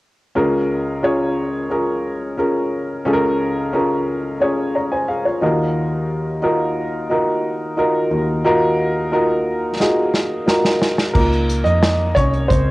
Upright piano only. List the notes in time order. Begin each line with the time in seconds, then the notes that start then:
0.35 C#2 C#3 C#4 F4 G#4 A#4
1.03 C#4 F4 G#4 C#5
1.70 C#4 F4 G#4 A#4
2.38 C#4 F4 G#4 A#4
3.05 C#2 C#3 C#4 F4 G#4 A4
3.13 A#4
3.73 C#4 F4 G#4 A#4
4.40 C#4 F4 G#4 C#5
4.75 C#5 A#5
4.92 C5 G#5
5.08 G#4 F5
5.25 F4 C#5
5.41 D#2 D#3 D#4 F4 F#4 A#4
6.42 D#4 F4 F#4 A#4
7.10 D#4 F4 F#4 A#4
7.77 D#4 F4 F#4 A#4
8.11 D#2 D#3
8.44 D#4 F4 F#4 A#4
9.12 D#4 F4 F#4 A#4
9.80 D#4 F4 F#4 G#4
10.46 D#4 F4 F#4 A#4
11.14 A#3 D#4 F4 A#4
11.64 D#4 D#5
12.15 C#4 C#5
12.48 C4 C5